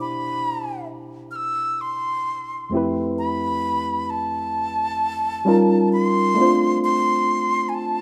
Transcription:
Already playing: B2 D4 E4 G4 C5
0.01 B5
1.31 F6
1.36 E6
1.81 C6
2.70 F2 A3 C4
2.74 E4 G4 B4
3.18 B5
4.10 A5
5.45 G3 C#4 D#4 F4 A#4
5.93 C6
6.35 A3 C4 D4
6.40 F4 C5
6.84 C6
7.69 G#5
7.74 A5

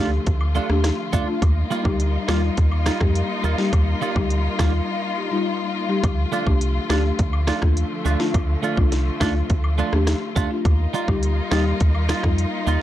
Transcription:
Already playing: D2 D3 F3 A3 F4, downlifter
0.00 D4 F4
0.27 D2, kick, closed hi-hat
0.41 high woodblock
0.55 A3 D4 F4 G4, cabasa
0.69 D#2 A3 D4 G4, cross-stick
0.84 cross-stick, snare, closed hi-hat
1.13 D2 A3 D4 F4, kick, cabasa
1.27 A3 D4 F4
1.42 D#2 G3 A#3 D#4, kick, closed hi-hat, high woodblock
1.70 G3 A#3 D#4 F4, cabasa
1.85 D2 G3 D#4 G4, kick, high woodblock
2.00 closed hi-hat
2.28 D#2 G3 A#3 D#4 F4, cross-stick, snare, cabasa, high woodblock
2.43 muted clean electric guitar stroke
2.57 D#2, kick, closed hi-hat
2.72 high woodblock
2.86 G3 A#3 D#4 F4, cross-stick, snare, cabasa
3.00 F2 G3 D#4 G4, kick, cross-stick
3.15 closed hi-hat
3.44 D#2 G3 A#3 D#4 F4, cabasa
3.58 G3 D#4 G4, snare
3.73 D#2, kick, closed hi-hat, high woodblock
4.01 G3 A#3 D#4 F4 G4, cabasa
4.16 D2 G3 D#4 G4, kick, high woodblock
4.30 closed hi-hat
4.59 D#2 G3 A#3 D#4 F4, kick, cross-stick, snare, cabasa, high woodblock
4.73 muted clean electric guitar stroke
5.17 D#4 G4
5.31 G3 D#4 F4
5.74 D#4 F4
5.89 G3 D#4 G4
6.04 D2 D3 F3 A3, kick, closed hi-hat, high woodblock
6.32 A3 D4 F4, cabasa
6.47 C2 A3 D4 G4, kick, high woodblock
6.61 closed hi-hat
6.90 D2 A3 D4 F4 G4, cross-stick, snare, cabasa, high woodblock
7.19 D2, kick, closed hi-hat
7.33 high woodblock
7.47 A3 D4 F4, cross-stick, snare, cabasa
7.62 D#2 A3 D4 F4, kick, cross-stick
7.77 closed hi-hat
8.05 D2 A3 D4 F4, cabasa
8.20 A3 D4 F4, snare
8.34 D2, kick, closed hi-hat, high woodblock
8.63 A3 D4 F4, cabasa
8.77 C2 A3 D4 F4, kick, high woodblock
8.92 snare, closed hi-hat
9.20 D2 A3 D4 F4, kick, cross-stick, snare, cabasa, high woodblock
9.35 muted clean electric guitar stroke
9.50 D2, kick, closed hi-hat
9.64 high woodblock
9.78 A3 D4 F4, cabasa
9.93 D#2 A3 D4 G4, cross-stick
10.07 cross-stick, snare, closed hi-hat
10.36 D2 A3 D4 F4 G4, kick, cabasa
10.50 A3 D4 F4
10.65 D#2 G3 A#3 D#4 F4, kick, closed hi-hat, high woodblock
10.93 G3 D#4 F4, cabasa
11.08 D2 G3 D#4 G4, kick, high woodblock
11.23 closed hi-hat
11.51 D#2 G3 D#4 F4 G4, cross-stick, snare, cabasa, high woodblock
11.66 muted clean electric guitar stroke
11.80 D#2, kick, closed hi-hat
11.95 high woodblock
12.09 G3 D#4 F4, cross-stick, snare, cabasa
12.23 F2 G3 D#4 F4, kick, cross-stick
12.38 closed hi-hat
12.67 D#2 G3 D#4 F4, cabasa

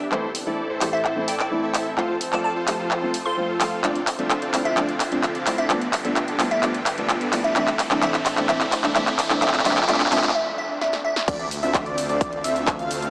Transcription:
Already playing: riser
0.11 A2 E3 A3 C4 E4 A4 C5, clap
0.35 open hi-hat
0.46 E3 A3 C4 E4 A4 D5
0.70 E4 A4 C5
0.81 E3 A3 C4 G4, clap, open hi-hat
0.93 E4 A4 C5 E5
1.05 clap
1.16 E3 A3 C4 E4
1.28 E4 A4 D5 G5, open hi-hat
1.40 G5, clap
1.51 E3 A3 C4 E4
1.63 E4 A4 E5
1.74 clap, open hi-hat
1.97 F2 F3 A3 C4 F4 A4 C5, clap
2.21 open hi-hat
2.32 F3 A3 C4 F4 A4 D5 A5, clap
2.44 A5
2.56 F4 A4 C5
2.67 F3 A3 C4 G4, clap, open hi-hat
2.79 F4 A4 C5
2.91 clap
3.02 F3 A3 C4 F4
3.14 open hi-hat
3.26 F4 A4 C5 C6
3.37 F3 A3 C4 F4
3.60 F3 A3 C4 F4 A4 F5, clap, open hi-hat
3.83 D2 D3 F3 A3 C4 D4 F4 A4 D5, clap, closed hi-hat
3.95 closed hi-hat
4.07 clap, open hi-hat
4.18 F3 A3 C4 D4 F4 A4 E5, closed hi-hat
4.30 clap, closed hi-hat
4.42 C4 D4 F4 A4 D5, closed hi-hat
4.53 F3 A3 C4 E4, clap, open hi-hat
4.65 C4 D4 F4 A4 D5 E5, closed hi-hat
4.76 F3 A3 C4 D4 F4 A4 D5, clap, closed hi-hat
4.89 closed hi-hat
5.00 clap, open hi-hat
5.11 F3 A3 C4 D4 F4 A4 E5, closed hi-hat
5.23 clap, closed hi-hat
5.35 C4 D4 F4 A4 D5, closed hi-hat
5.46 F3 A3 C4 E4, clap, open hi-hat
5.58 C4 D4 F4 A4 D5 E5, closed hi-hat
5.69 G2 F3 A3 B3 D4 F4 G4 A4 D5, clap, closed hi-hat
5.82 closed hi-hat
5.93 clap, open hi-hat
6.04 F3 A3 B3 D4 F4 A4 E5, closed hi-hat
6.16 clap, closed hi-hat
6.28 B3 D4 F4 A4 D5, closed hi-hat
6.39 F3 A3 B3 E4, clap, open hi-hat
6.51 B3 D4 F4 A4 D5 E5, closed hi-hat
6.62 F3 A3 B3 D4 F4 A4 D5, clap, closed hi-hat
6.74 closed hi-hat
6.86 clap, open hi-hat
6.97 F3 A3 B3 D4 F4 A4 E5, closed hi-hat
7.09 clap, closed hi-hat
7.21 B3 D4 F4 A4 D5, closed hi-hat
7.32 F3 A3 B3 E4, clap, open hi-hat
7.44 B3 D4 F4 A4 D5 E5, closed hi-hat
7.55 A2 E3 A3 C4 D4 E4 A4 D5 E5, clap, closed hi-hat
7.67 clap, closed hi-hat
7.79 clap, open hi-hat
7.90 E3 A3 C4 D4 E4 A4 E5, clap, closed hi-hat
8.02 E3 A3 C4 D4 E4 A4 D5 E5, clap, closed hi-hat
8.14 clap, closed hi-hat
8.26 clap, open hi-hat
8.37 E3 A3 C4 D4 E4 A4 E5, clap, closed hi-hat
8.48 E3 A3 C4 D4 E4 A4 D5 E5, clap, closed hi-hat
8.61 clap, closed hi-hat
8.72 clap, open hi-hat
8.83 E3 A3 C4 D4 E4 A4 E5, clap, closed hi-hat
8.95 E3 A3 C4 D4 E4 A4 D5 E5, clap, closed hi-hat
9.07 clap, closed hi-hat
9.19 clap, open hi-hat
9.30 E3 A3 C4 D4 E4 A4 E5, clap, closed hi-hat
9.41 F2 F3 A3 C4 D4 F4 A4 D5 E5, clap, closed hi-hat
9.48 clap
9.54 clap, closed hi-hat
9.59 clap
9.65 F3 A3 C4 D4 F4 A4 D5 E5, clap, open hi-hat
9.71 clap
9.77 clap, closed hi-hat
9.83 clap
9.88 F3 A3 C4 D4 F4 A4 D5 E5, clap, closed hi-hat
9.94 clap
10.00 clap, closed hi-hat
10.06 clap
10.11 F3 A3 C4 D4 F4 A4 D5 E5, clap, open hi-hat
10.18 clap
10.23 clap, closed hi-hat
10.29 clap
10.35 E5, swell
10.58 E5
10.81 E5, snare
10.93 snare
11.05 E5
11.16 snare
11.28 D2 D3 A3 C4 D4 F4 A4 D5, kick, closed hi-hat, crash, ride, sub drop, cabasa
11.40 closed hi-hat
11.51 open hi-hat, ride, cabasa
11.63 D2 C4 D4 F4 A4 E5, closed hi-hat, cabasa
11.74 kick, clap, closed hi-hat, ride, cabasa
11.86 D2 C4 D4 F4 A4 D5, closed hi-hat
11.98 open hi-hat, ride, cabasa
12.09 D2 C4 D4 F4 A4 D5, closed hi-hat, cabasa
12.21 kick, closed hi-hat, ride, cabasa
12.33 closed hi-hat
12.44 D2 C4 D4 F4 A4 E5, open hi-hat, ride, cabasa
12.56 closed hi-hat, cabasa
12.67 kick, clap, closed hi-hat, ride, cabasa
12.79 D2 C4 D4 F4 A4 F5, closed hi-hat, cabasa
12.91 open hi-hat, ride, cabasa
13.02 closed hi-hat, cabasa

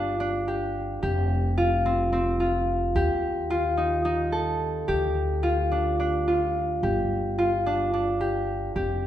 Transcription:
Already playing: G1 C4 D4 F4 G4
0.20 D4
0.48 G4
1.03 F1 G4
1.58 F4
1.86 C4
2.13 C4
2.40 F4
2.95 D#2 G4
3.50 F4
3.77 D#4
4.05 D#4
4.32 A4
4.88 D2 G4
5.43 F4
5.72 D4
6.00 D4
6.28 F4
6.83 G1 G4
7.38 F4
7.66 D4
7.93 D4
8.21 G4
8.76 F1 G4

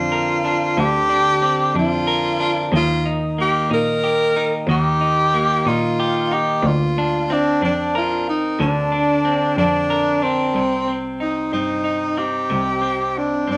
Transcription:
Already playing: F2 D3 C4 D4 F4
0.12 A#4
0.45 D4
0.77 D2 D3 G4
1.09 D4
1.42 C4
1.74 F2 D4
1.79 F4
2.07 A#4
2.40 D4
2.72 D#2 D#3 F4
3.05 D#4
3.38 A#3 G4
3.70 A#2 D#4 A#4
4.04 G4
4.36 D#4
4.67 D#2 D#3 G4
5.01 D#4
5.34 A#3
5.65 A#2 D#4 F4
6.00 G4
6.31 D#4 G4
6.63 D2
6.67 F4
6.98 D4
7.30 C4 D4
7.61 F2 D4
7.95 F4 A#4
8.29 D#4
8.59 D2 D3 D4
8.92 D4
9.25 C4
9.57 F2 D4
9.90 A#4
10.22 C4 D4
10.54 C2 C3
10.88 C4
11.20 D#4
11.53 G2 C4 D#4
11.84 D#4
12.17 C4 G4
12.50 C2 C3
12.82 C4
13.18 D4
13.47 G2 C4 D4

